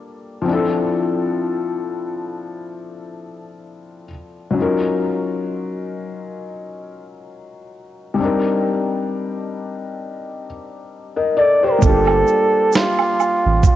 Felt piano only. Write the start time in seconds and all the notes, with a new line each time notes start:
Already playing: G3 A#3 D4 F4 A4
0.42 F3 C4
0.48 D4 E4
0.53 A4
4.51 F#3 C#4
4.56 D#4 F4
4.62 A#4
8.14 G3 C4
8.20 D4 D#4
8.25 A#4
11.17 A#4 D#5
11.37 A4 D5
11.63 G4 C5
11.78 G3 A#3
11.84 D4 F4
11.89 G4